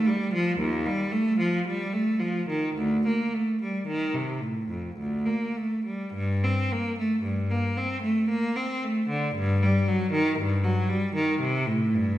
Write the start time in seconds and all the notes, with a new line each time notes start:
0.07 G3
0.34 F3
0.59 D#2
0.86 G3
1.12 A3
1.39 F3
1.67 G3
1.93 A3
2.20 F3
2.49 D#3
2.76 D2
3.07 A#3
3.34 A3
3.62 G3
3.87 D#3
4.14 C3
4.41 A2
4.69 F2
4.97 D2
5.26 A#3
5.57 A3
5.85 G3
6.13 G2
6.43 C4
6.72 A#3
6.99 A3
7.22 G2
7.51 A#3
7.77 C4
8.02 A3
8.29 A#3
8.56 C4
8.83 A3
9.09 D3
9.35 G2
9.62 G3
9.88 F#3
10.12 D#3
10.38 G2
10.64 F#3
10.89 G3
11.15 D#3
11.41 C3
11.67 A2
11.94 G2